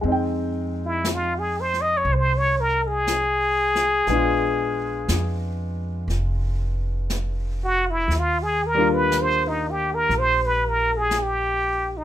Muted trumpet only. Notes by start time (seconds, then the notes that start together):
0.86 E4
1.14 F4
1.39 G#4
1.61 C5
1.81 D#5
1.97 C#5
2.13 C5
2.38 C#5
2.60 A#4
2.87 G#4
7.64 F#4
7.90 E4
8.19 F4
8.43 G#4
8.67 A#4
8.94 B4
9.22 C5
9.48 D#4
9.71 G4
9.95 A#4
10.19 C5
10.46 B4
10.68 A#4
10.97 G#4
11.23 G4
11.97 D#4